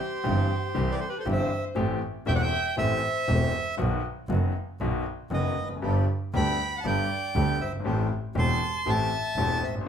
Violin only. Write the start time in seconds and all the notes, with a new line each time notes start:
Already playing: G4
0.91 B4
1.00 A4
1.09 G4
1.18 A4
1.29 C5
2.27 E5
2.35 D5
2.42 E5
2.79 C5
5.34 B4
6.36 G5
6.77 F#5
6.86 D5
7.61 C5
8.40 A5
8.88 E5
9.62 C5